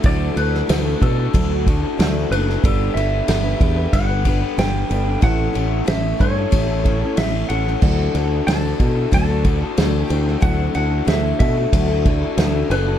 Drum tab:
CC |----------------|----------------|----------------|x---------------|
RD |x-x-x-x-x-x-x-x-|x-x-x-x-x-x-x-x-|x-x-x-x-x-x-x-x-|--x-x-x-x-x-x-x-|
SD |---oo-------o--o|----o-------o---|----o-------o--o|----o-------o--o|
BD |o-----o-o-o-----|o-----o-o-o-----|o-----o-o-o-----|o-----o-o-o-----|

CC |----------------|
RD |x-x-x-x-x-x-x-x-|
SD |----o-------o---|
BD |o-----o-o-o-----|